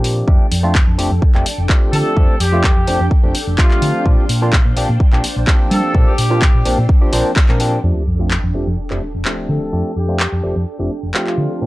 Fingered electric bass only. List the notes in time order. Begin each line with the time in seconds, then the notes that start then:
Already playing: A#2
0.28 F2
0.52 F2
0.87 F2
0.99 F1
1.11 F2
1.22 muted fingered electric bass stroke
1.34 F1
1.58 F1
1.93 D3
2.17 F2
2.40 F2
2.76 F2
2.88 F1
3.00 F2
3.24 F1
3.47 F1
3.82 D3
4.06 A#2
4.29 A#2
4.65 A#2
4.76 A#1
4.89 A#2
5.00 muted fingered electric bass stroke
5.13 A#1
5.36 A#1
5.71 G3
5.95 A#2
6.18 A#2
6.54 A#2
6.66 A#1
6.78 A#2
7.13 A#1
7.49 A#2
7.84 F2
8.07 F2
8.43 F2
8.54 F1
8.67 F2
8.91 F1
9.14 F1
9.49 D3
9.73 F2
9.96 F2
10.32 F2
10.44 F1
10.56 F2
10.79 F1
11.03 F1
11.38 D3
11.62 A#2